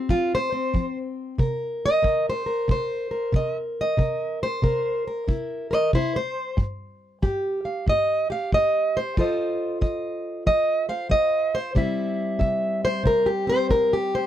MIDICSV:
0, 0, Header, 1, 3, 480
1, 0, Start_track
1, 0, Tempo, 647948
1, 1035, Time_signature, 4, 2, 24, 8
1, 10569, End_track
2, 0, Start_track
2, 0, Title_t, "Steel-string acoustic guitar"
2, 0, Program_c, 0, 25
2, 0, Note_on_c, 0, 60, 51
2, 72, Note_on_c, 0, 53, 68
2, 77, Note_on_c, 0, 65, 94
2, 236, Note_off_c, 0, 65, 0
2, 257, Note_on_c, 0, 72, 111
2, 386, Note_off_c, 0, 60, 0
2, 388, Note_on_c, 0, 60, 53
2, 520, Note_off_c, 0, 53, 0
2, 545, Note_on_c, 0, 53, 77
2, 726, Note_off_c, 0, 72, 0
2, 997, Note_off_c, 0, 53, 0
2, 1025, Note_on_c, 0, 48, 83
2, 1033, Note_on_c, 0, 70, 55
2, 1055, Note_off_c, 0, 60, 0
2, 1374, Note_on_c, 0, 75, 116
2, 1477, Note_off_c, 0, 48, 0
2, 1499, Note_off_c, 0, 70, 0
2, 1499, Note_on_c, 0, 48, 86
2, 1502, Note_on_c, 0, 70, 55
2, 1685, Note_off_c, 0, 75, 0
2, 1700, Note_on_c, 0, 72, 91
2, 1821, Note_off_c, 0, 70, 0
2, 1824, Note_on_c, 0, 70, 50
2, 1953, Note_off_c, 0, 48, 0
2, 1985, Note_on_c, 0, 48, 71
2, 2000, Note_off_c, 0, 72, 0
2, 2009, Note_on_c, 0, 72, 95
2, 2296, Note_off_c, 0, 70, 0
2, 2304, Note_on_c, 0, 70, 52
2, 2436, Note_off_c, 0, 48, 0
2, 2462, Note_on_c, 0, 48, 76
2, 2482, Note_off_c, 0, 72, 0
2, 2489, Note_on_c, 0, 75, 94
2, 2642, Note_off_c, 0, 75, 0
2, 2822, Note_on_c, 0, 75, 101
2, 2915, Note_off_c, 0, 48, 0
2, 2934, Note_off_c, 0, 70, 0
2, 2943, Note_on_c, 0, 48, 73
2, 2949, Note_on_c, 0, 70, 56
2, 3278, Note_off_c, 0, 75, 0
2, 3281, Note_on_c, 0, 72, 112
2, 3396, Note_off_c, 0, 48, 0
2, 3424, Note_on_c, 0, 48, 77
2, 3425, Note_off_c, 0, 70, 0
2, 3434, Note_on_c, 0, 70, 57
2, 3747, Note_off_c, 0, 70, 0
2, 3759, Note_off_c, 0, 72, 0
2, 3759, Note_on_c, 0, 70, 52
2, 3876, Note_off_c, 0, 48, 0
2, 3908, Note_on_c, 0, 48, 72
2, 3914, Note_on_c, 0, 64, 51
2, 4219, Note_off_c, 0, 70, 0
2, 4228, Note_on_c, 0, 70, 51
2, 4245, Note_on_c, 0, 72, 84
2, 4254, Note_off_c, 0, 72, 0
2, 4254, Note_on_c, 0, 75, 97
2, 4358, Note_off_c, 0, 48, 0
2, 4394, Note_on_c, 0, 48, 72
2, 4396, Note_off_c, 0, 70, 0
2, 4397, Note_off_c, 0, 64, 0
2, 4405, Note_off_c, 0, 75, 0
2, 4406, Note_on_c, 0, 64, 82
2, 4409, Note_on_c, 0, 72, 90
2, 4556, Note_off_c, 0, 72, 0
2, 4561, Note_off_c, 0, 64, 0
2, 4565, Note_on_c, 0, 72, 102
2, 4841, Note_off_c, 0, 48, 0
2, 4867, Note_on_c, 0, 43, 85
2, 4880, Note_off_c, 0, 72, 0
2, 5318, Note_off_c, 0, 43, 0
2, 5351, Note_on_c, 0, 43, 83
2, 5356, Note_on_c, 0, 67, 54
2, 5668, Note_on_c, 0, 77, 49
2, 5800, Note_off_c, 0, 43, 0
2, 5826, Note_on_c, 0, 43, 73
2, 5845, Note_off_c, 0, 77, 0
2, 5848, Note_on_c, 0, 75, 104
2, 6139, Note_off_c, 0, 67, 0
2, 6148, Note_on_c, 0, 67, 49
2, 6159, Note_off_c, 0, 75, 0
2, 6162, Note_on_c, 0, 77, 82
2, 6278, Note_off_c, 0, 43, 0
2, 6312, Note_on_c, 0, 43, 73
2, 6319, Note_off_c, 0, 77, 0
2, 6329, Note_on_c, 0, 75, 117
2, 6643, Note_off_c, 0, 75, 0
2, 6643, Note_on_c, 0, 72, 102
2, 6761, Note_off_c, 0, 43, 0
2, 6776, Note_off_c, 0, 67, 0
2, 6799, Note_on_c, 0, 53, 79
2, 6800, Note_off_c, 0, 72, 0
2, 6803, Note_on_c, 0, 65, 57
2, 6807, Note_on_c, 0, 69, 53
2, 6814, Note_on_c, 0, 72, 55
2, 6819, Note_on_c, 0, 75, 52
2, 7245, Note_off_c, 0, 53, 0
2, 7264, Note_off_c, 0, 75, 0
2, 7269, Note_on_c, 0, 53, 79
2, 7273, Note_on_c, 0, 75, 57
2, 7720, Note_off_c, 0, 53, 0
2, 7747, Note_off_c, 0, 75, 0
2, 7752, Note_on_c, 0, 53, 74
2, 7756, Note_on_c, 0, 75, 104
2, 8058, Note_off_c, 0, 72, 0
2, 8066, Note_on_c, 0, 72, 51
2, 8067, Note_off_c, 0, 75, 0
2, 8070, Note_on_c, 0, 77, 91
2, 8201, Note_off_c, 0, 53, 0
2, 8219, Note_on_c, 0, 53, 82
2, 8229, Note_off_c, 0, 77, 0
2, 8232, Note_on_c, 0, 75, 106
2, 8545, Note_off_c, 0, 72, 0
2, 8554, Note_on_c, 0, 72, 108
2, 8555, Note_off_c, 0, 75, 0
2, 8675, Note_off_c, 0, 53, 0
2, 8700, Note_off_c, 0, 65, 0
2, 8702, Note_off_c, 0, 69, 0
2, 8703, Note_on_c, 0, 48, 77
2, 8709, Note_on_c, 0, 55, 54
2, 8715, Note_off_c, 0, 72, 0
2, 8715, Note_on_c, 0, 60, 55
2, 8718, Note_on_c, 0, 64, 56
2, 8724, Note_on_c, 0, 76, 56
2, 9157, Note_off_c, 0, 48, 0
2, 9172, Note_off_c, 0, 76, 0
2, 9179, Note_on_c, 0, 48, 81
2, 9183, Note_on_c, 0, 76, 54
2, 9514, Note_off_c, 0, 64, 0
2, 9517, Note_on_c, 0, 72, 106
2, 9635, Note_off_c, 0, 48, 0
2, 9655, Note_on_c, 0, 48, 78
2, 9677, Note_off_c, 0, 72, 0
2, 9680, Note_on_c, 0, 70, 95
2, 9821, Note_off_c, 0, 76, 0
2, 9824, Note_on_c, 0, 67, 91
2, 9838, Note_off_c, 0, 70, 0
2, 9970, Note_off_c, 0, 60, 0
2, 9979, Note_on_c, 0, 60, 52
2, 9991, Note_off_c, 0, 67, 0
2, 9997, Note_on_c, 0, 72, 109
2, 10113, Note_off_c, 0, 48, 0
2, 10144, Note_on_c, 0, 48, 74
2, 10151, Note_off_c, 0, 72, 0
2, 10154, Note_on_c, 0, 70, 98
2, 10316, Note_off_c, 0, 70, 0
2, 10321, Note_on_c, 0, 67, 97
2, 10479, Note_off_c, 0, 67, 0
2, 10481, Note_on_c, 0, 72, 96
2, 10569, Note_off_c, 0, 48, 0
2, 10569, Note_off_c, 0, 55, 0
2, 10569, Note_off_c, 0, 60, 0
2, 10569, Note_off_c, 0, 72, 0
2, 10569, End_track
3, 0, Start_track
3, 0, Title_t, "Drums"
3, 69, Note_on_c, 9, 36, 69
3, 143, Note_off_c, 9, 36, 0
3, 552, Note_on_c, 9, 36, 68
3, 626, Note_off_c, 9, 36, 0
3, 1032, Note_on_c, 9, 36, 69
3, 1106, Note_off_c, 9, 36, 0
3, 1513, Note_on_c, 9, 36, 70
3, 1588, Note_off_c, 9, 36, 0
3, 1994, Note_on_c, 9, 36, 73
3, 2068, Note_off_c, 9, 36, 0
3, 2475, Note_on_c, 9, 36, 75
3, 2549, Note_off_c, 9, 36, 0
3, 2955, Note_on_c, 9, 36, 70
3, 3029, Note_off_c, 9, 36, 0
3, 3436, Note_on_c, 9, 36, 77
3, 3510, Note_off_c, 9, 36, 0
3, 3916, Note_on_c, 9, 36, 74
3, 3990, Note_off_c, 9, 36, 0
3, 4395, Note_on_c, 9, 36, 74
3, 4469, Note_off_c, 9, 36, 0
3, 4873, Note_on_c, 9, 36, 74
3, 4947, Note_off_c, 9, 36, 0
3, 5354, Note_on_c, 9, 36, 76
3, 5428, Note_off_c, 9, 36, 0
3, 5834, Note_on_c, 9, 36, 75
3, 5909, Note_off_c, 9, 36, 0
3, 6315, Note_on_c, 9, 36, 70
3, 6389, Note_off_c, 9, 36, 0
3, 6795, Note_on_c, 9, 36, 71
3, 6869, Note_off_c, 9, 36, 0
3, 7275, Note_on_c, 9, 36, 71
3, 7349, Note_off_c, 9, 36, 0
3, 7755, Note_on_c, 9, 36, 74
3, 7829, Note_off_c, 9, 36, 0
3, 8234, Note_on_c, 9, 36, 75
3, 8308, Note_off_c, 9, 36, 0
3, 8713, Note_on_c, 9, 36, 76
3, 8788, Note_off_c, 9, 36, 0
3, 9193, Note_on_c, 9, 36, 73
3, 9267, Note_off_c, 9, 36, 0
3, 9672, Note_on_c, 9, 36, 73
3, 9746, Note_off_c, 9, 36, 0
3, 10153, Note_on_c, 9, 36, 72
3, 10227, Note_off_c, 9, 36, 0
3, 10569, End_track
0, 0, End_of_file